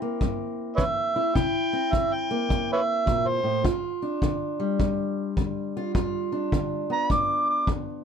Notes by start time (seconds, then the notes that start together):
Already playing: E3 C4 E4
0.02 A#3
0.21 G2, kick
0.76 E3 B4 C#5 E5, kick
1.16 E4
1.35 C3 E4 G5, kick
1.73 C4
1.92 E3 E5, kick
2.13 G5
2.31 A#3
2.49 G2, kick
2.73 B4 C#5 E5
3.06 A#2, kick
3.28 C5
3.43 A2
3.64 G2 F4, kick
4.02 D4
4.22 D3, kick
4.60 G3
4.79 G2, kick
5.37 D3, kick
5.77 F4
5.95 G2 F4, kick
6.32 D4
6.52 D3, kick
6.90 B3 A#5
7.10 G2 D6, kick
7.50 D6
7.67 D3, kick